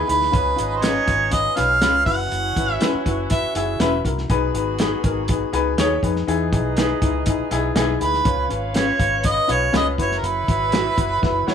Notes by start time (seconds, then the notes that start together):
0.07 D2 D#4 E4 G#4 B4, closed hi-hat
0.22 snare
0.31 C#2 C#4 D#4 F4 G#4 B4 D#5, kick, closed hi-hat
0.56 G#1 C#4 F4 B4, closed hi-hat
0.76 C5
0.81 C#4 F4 B4 C#5, snare, closed hi-hat
1.06 G#1 C#4 F4 B4, kick, closed hi-hat
1.31 C#4 F4 B4 D#5, kick, closed hi-hat
1.56 B1 C#4 F4 B4 F5, snare, closed hi-hat
1.81 C#2 C#4 F4 B4, snare, closed hi-hat
2.06 F#1 C#4 E4 F#4 B4 C#5 F#5, kick, open hi-hat
2.32 F#1, closed hi-hat
2.56 G#1 E4 F#4 B4, kick, closed hi-hat
2.73 E5
2.80 C#4 E4 F#4 B4, snare, closed hi-hat
2.94 muted fingered electric bass stroke
3.06 F#1 E4 F#4 B4, kick, closed hi-hat
3.30 E4 F#4 B4 E5, kick, closed hi-hat
3.43 muted fingered electric bass stroke
3.55 F#1 E4 F#4 G#4 E5, closed hi-hat
3.80 E1 C#4 E4 F#4 B4, snare, closed hi-hat
4.05 C2 E4 F#4 A#4, kick, closed hi-hat
4.18 snare
4.30 B1 B3 D#4 F#4 G#4 B4, kick, closed hi-hat
4.54 G#1 D#4 G#4 B4, closed hi-hat
4.79 D#4 G#4 B4, snare, closed hi-hat
5.04 G#1 D#4 G#4 A#4, kick, closed hi-hat
5.28 D#4 G#4 B4, kick, closed hi-hat
5.53 C#2 D#4 G#4 B4, closed hi-hat
5.78 D#2 D#4 G#4 B4 C#5, snare, closed hi-hat
6.03 F2 D#4 G#4 B4, kick, closed hi-hat
6.16 snare
6.27 E2 D#4 E4 G#4 B4 D#5, closed hi-hat
6.52 B1 D#4 E4 G#4, kick, closed hi-hat
6.77 D#4 E4 G#4 B4, snare, closed hi-hat
7.01 C#2 D#4 E4 G#4, kick, closed hi-hat
7.26 D#4 E4 G#4, kick, closed hi-hat
7.40 muted fingered electric bass stroke
7.51 B1 D#4 E4 G#4, snare, closed hi-hat
7.75 B1 D#4 E4 G#4 B4, snare, closed hi-hat
8.00 D2 D#4 E4 G#4 B4, closed hi-hat
8.14 snare
8.24 C#2 C#4 F4 B4 C#5 F5, kick, closed hi-hat
8.49 G#1 C#4 F4 B4, closed hi-hat
8.73 C#4 F4 B4 C#5, snare, closed hi-hat
8.99 G#1 C#4 F4 B4, kick, closed hi-hat
9.23 C#4 F4 B4 D#5, kick, closed hi-hat
9.47 B1 C#4 F4 B4 C#5, closed hi-hat
9.72 C#2 C#4 F4 B4 D#5, snare, closed hi-hat
9.98 F#1 E4 F#4 B4 C#5 E5, kick, closed hi-hat
10.12 snare
10.18 A#4
10.23 F#1 B4, closed hi-hat
10.48 G#1 E4 F#4 B4, kick, closed hi-hat
10.72 E4 F#4 B4, snare, closed hi-hat
10.97 F#1 E4 F#4 B4, kick, closed hi-hat
11.22 F#1 E4 F#4 B4, kick, snare
11.47 E4 F#4 C#5, muted fingered electric bass stroke, snare